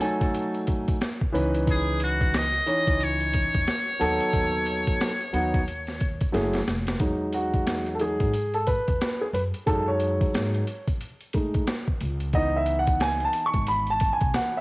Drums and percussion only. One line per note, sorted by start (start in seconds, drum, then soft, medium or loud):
0.01 closed hi-hat medium
0.21 kick loud
0.21 closed hi-hat medium
0.34 closed hi-hat medium
0.54 closed hi-hat soft
0.67 kick medium
0.67 closed hi-hat medium
0.88 kick medium
0.88 closed hi-hat medium
1.01 snare loud
1.01 closed hi-hat medium
1.21 kick medium
1.35 closed hi-hat medium
1.54 closed hi-hat medium
1.67 kick loud
1.67 closed hi-hat loud
2.00 closed hi-hat medium
2.21 kick medium
2.21 closed hi-hat soft
2.34 snare loud
2.34 closed hi-hat medium
2.54 closed hi-hat soft
2.67 closed hi-hat medium
2.87 kick loud
2.87 closed hi-hat medium
3.00 closed hi-hat medium
3.21 closed hi-hat soft
3.34 kick medium
3.34 closed hi-hat medium
3.54 kick medium
3.54 closed hi-hat medium
3.67 snare loud
3.67 closed hi-hat medium
4.01 closed hi-hat medium
4.20 closed hi-hat medium
4.33 kick loud
4.33 closed hi-hat loud
4.66 closed hi-hat medium
4.87 kick medium
4.87 closed hi-hat soft
5.01 snare loud
5.01 closed hi-hat medium
5.21 closed hi-hat soft
5.34 closed hi-hat medium
5.54 kick loud
5.54 closed hi-hat medium
5.68 closed hi-hat medium
5.87 snare soft
5.87 closed hi-hat soft
6.00 kick medium
6.00 closed hi-hat medium
6.21 kick medium
6.21 closed hi-hat medium
6.34 snare soft
6.34 closed hi-hat medium
6.53 snare medium
6.53 closed hi-hat soft
6.68 snare medium
6.68 closed hi-hat medium
6.87 snare medium
6.87 closed hi-hat medium
7.00 kick loud
7.00 closed hi-hat loud
7.33 closed hi-hat medium
7.54 kick medium
7.54 closed hi-hat soft
7.67 snare loud
7.67 closed hi-hat medium
7.86 closed hi-hat soft
7.99 closed hi-hat medium
8.20 kick loud
8.20 closed hi-hat medium
8.34 closed hi-hat medium
8.54 closed hi-hat soft
8.67 kick medium
8.67 closed hi-hat medium
8.88 kick medium
8.88 closed hi-hat medium
9.01 snare loud
9.01 closed hi-hat medium
9.34 closed hi-hat medium
9.54 closed hi-hat medium
9.67 kick loud
9.67 closed hi-hat loud
10.00 closed hi-hat medium
10.21 kick loud
10.21 closed hi-hat soft
10.34 snare loud
10.34 closed hi-hat medium
10.54 closed hi-hat soft
10.67 closed hi-hat medium
10.87 kick loud
10.87 closed hi-hat medium
11.01 closed hi-hat medium
11.21 closed hi-hat soft
11.33 kick medium
11.33 closed hi-hat medium
11.54 kick loud
11.54 closed hi-hat soft
11.67 snare loud
11.67 closed hi-hat medium
11.88 kick medium
12.01 closed hi-hat medium
12.20 closed hi-hat medium
12.33 kick loud
12.33 closed hi-hat loud
12.66 closed hi-hat medium
12.87 kick medium
12.87 closed hi-hat soft
13.00 snare loud
13.00 closed hi-hat medium
13.20 closed hi-hat soft
13.33 closed hi-hat medium
13.54 kick loud
13.54 closed hi-hat medium
13.67 closed hi-hat medium
13.87 closed hi-hat soft
14.00 kick medium
14.00 closed hi-hat medium
14.21 kick loud
14.21 closed hi-hat medium
14.34 snare loud
14.34 closed hi-hat medium